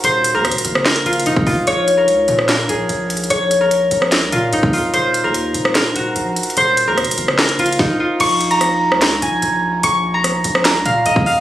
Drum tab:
CC |------------------------------------------------|------------------------------------------------|------------------------------------------------|------------------------------------------------|
HH |x-----x-----x-x-x-x-----x--x--x-x-x-x-----o-----|x-----x-----x-----x-----x-----x-----x-----x-x-x-|x-----x-----x-----x-----x-----x-----x-----o-----|x-----x-----x-----x-----x-----x-----x-----x-x-x-|
CP |------------------------x-----------------------|------------------------x-----------------------|------------------------x-----------------------|------------------------x-----------------------|
SD |------------r--------r--o-----------------------|---------------------r--o-----------------------|---------------------r--o-----------------------|---------------------r--o-----------------------|
BD |---------------------------------------o--o-----|------------------------------------------------|---------------------------------------o--------|------------------------------------------------|

CC |------------------------------------------------|x-----------------------------------------------|------------------------------------------------|
HH |x-----x-----x-x-x-x-----x--x--x-x-x-------------|x-----x--x--x-----------x-----x-----x-----------|x-----------x-----x-----x-----x-----x-----o-----|
CP |------------------------x-----------------------|------------------------x-----------------------|------------------------x-----------------------|
SD |------------r--------r--o-----------o-----------|------------r--------r--o-----------------------|------------r--------r--o-----------------------|
BD |------------------------------------o-----------|------------------------------------------------|---------------------------------------o--------|